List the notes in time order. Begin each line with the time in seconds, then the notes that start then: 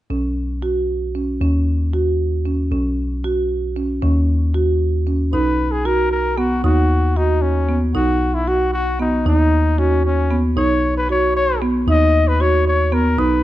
0.10 B1 C#4
0.62 F#4
1.15 C#4
1.41 D#2 C#4
1.93 F#4
2.45 C#4
2.71 B1 C#4
3.24 F#4
3.76 C#4
4.02 D#2 C#4
4.54 F#4
5.07 C#4
5.33 B1 D#4 B4
5.71 G#4
5.85 F#4 A#4
6.11 A#4
6.38 B3 F#4
6.64 D#2 D#4 F#4
7.16 D#4 F#4
7.42 C#4
7.69 B3
7.95 B1 D#4 F#4
8.34 E4
8.48 F#4
8.73 F#4
8.99 B3 D#4
9.26 D#2 D#4
9.78 C#4 F#4
10.06 C#4
10.31 B3
10.56 B1 D#4 C#5
10.97 B4
11.09 F#4 C#5
11.37 C#5
11.62 B3
11.87 D#2 D#4 D#5
12.28 B4
12.40 F#4 C#5
12.67 C#5
12.92 B3 A#4
13.18 B1 D#4 B4